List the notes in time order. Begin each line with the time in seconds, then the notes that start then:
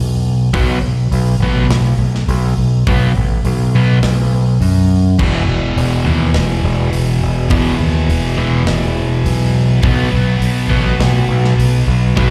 Already playing: B1
0.54 B1 B2 F#3 B3, kick, open hi-hat
0.82 B1
1.11 B1, open hi-hat
1.40 A1 B2 F#3 B3
1.70 B1, snare, open hi-hat
1.99 B1
2.15 snare
2.28 B1, open hi-hat
2.58 B1
2.87 B1 B2 F#3 B3, kick, open hi-hat
3.17 A1
3.45 B1, open hi-hat
3.75 B2 F#3 B3
4.03 B1, snare, open hi-hat
4.61 F#2, open hi-hat
5.19 E1 E2 B2 E3, kick, crash
5.48 E1
5.77 E1, open hi-hat
6.05 D#2 E2 B2 E3
6.34 E1, snare, open hi-hat
6.64 E1
6.93 E1, open hi-hat
7.22 E1
7.50 E1 E2 B2 E3, kick, open hi-hat
7.80 D#2
8.09 E1, open hi-hat
8.37 E2 B2 E3
8.67 E1, snare, open hi-hat
9.26 B1, open hi-hat
9.83 B1 B2 F#3 B3, kick, open hi-hat
10.12 B1
10.41 B1, open hi-hat
10.70 A1 B2 F#3 B3
11.00 B1, snare, open hi-hat
11.28 B1
11.45 snare
11.58 B1, open hi-hat
11.88 B1
12.16 B1 B2 F#3 B3, kick, open hi-hat